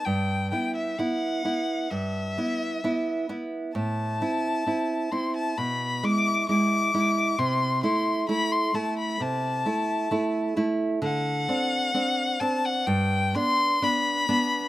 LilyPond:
<<
  \new Staff \with { instrumentName = "Violin" } { \time 4/4 \key e \minor \tempo 4 = 65 g''8 g''16 e''16 fis''4 e''4. r8 | a''4. c'''16 a''16 b''8 d'''8 d'''4 | c'''8 c'''8 b''16 c'''16 a''16 b''16 a''4. r8 | fis''4. a''16 fis''16 g''8 c'''8 b''4 | }
  \new Staff \with { instrumentName = "Nylon-string guitar" } { \time 4/4 \key e \minor g,8 <b e'>8 <b e'>8 <b e'>8 g,8 <b e'>8 <b e'>8 <b e'>8 | a,8 <c' e'>8 <c' e'>8 <c' e'>8 b,8 <gis e'>8 <gis e'>8 <gis e'>8 | c8 <a e'>8 <a e'>8 <a e'>8 c8 <a e'>8 <a e'>8 <a e'>8 | d8 <c' d'>8 <c' d'>8 <c' d'>8 g,8 <b d'>8 <b d'>8 <b d'>8 | }
>>